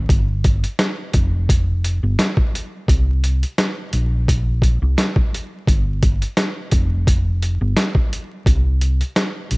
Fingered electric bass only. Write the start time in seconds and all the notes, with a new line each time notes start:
0.09 G1
1.14 F1
2.03 G1
2.89 C2
3.93 A#1
4.82 C2
5.68 G1
6.72 F1
7.61 G1
8.46 C2
9.51 A#1